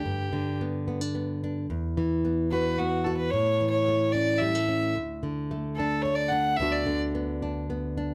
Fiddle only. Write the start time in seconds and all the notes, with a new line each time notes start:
Already playing: G4
2.51 B4
2.78 F#4
3.04 A4
3.17 B4
3.31 C#5
3.70 C#5
4.12 D5
4.39 E5
5.76 A4
6.02 C#5
6.15 D5
6.29 F#5
6.57 E5
6.72 D5